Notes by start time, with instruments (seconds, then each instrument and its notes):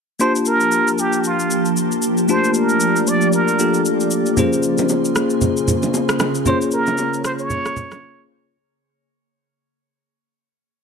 0.20 ambient pad F3 A#3 G4 A5, tine electric piano A#3 D4 F4 G4 A5, muted trumpet C5, shaker
0.36 shaker
0.45 muted trumpet A#4, shaker
0.60 shaker
0.72 shaker
0.88 shaker
0.98 muted trumpet G4, shaker
1.13 shaker
1.24 muted trumpet F4, shaker
1.40 shaker
1.51 shaker
1.65 shaker
1.77 shaker
1.92 shaker
2.02 shaker
2.17 shaker
2.28 tine electric piano A3 D4 F4 G4 A5, muted trumpet C5, ambient pad D5, shaker
2.35 tine electric piano A#3
2.44 shaker
2.54 muted trumpet A#4, shaker
2.69 shaker
2.80 shaker
2.96 shaker
3.07 muted trumpet D5, shaker
3.21 shaker
3.33 muted trumpet A#4, shaker
3.48 shaker
3.59 tine electric piano A#3 D4 F4 G4 A4, shaker
3.74 shaker
3.85 shaker
4.00 shaker
4.11 shaker
4.26 shaker
4.37 ambient pad C#3 A#3 G#4 C5, tine electric piano A#3 C#4 F4 G#4 C5, low conga, shaker
4.53 shaker
4.63 shaker
4.78 low bongo, shaker
4.89 high bongo, shaker
5.05 shaker
5.16 cross-stick, shaker
5.30 shaker
5.41 low conga, shaker
5.57 shaker
5.68 low conga, shaker
5.83 low bongo, shaker
5.94 high bongo, shaker
6.09 cross-stick, shaker
6.19 cross-stick, low bongo, shaker
6.35 shaker
6.46 tine electric piano A#3 C#4 F4 G#4 C#5, muted trumpet C5, ambient pad C#5, low conga, shaker
6.62 shaker
6.71 muted trumpet A#4, shaker
6.87 low bongo, shaker
6.98 high bongo, shaker
7.14 shaker
7.24 muted trumpet C5, cross-stick, shaker
7.39 muted trumpet C#5, shaker
7.50 low conga, shaker
7.66 cross-stick, shaker
7.76 low conga, shaker
7.91 cross-stick, low bongo, shaker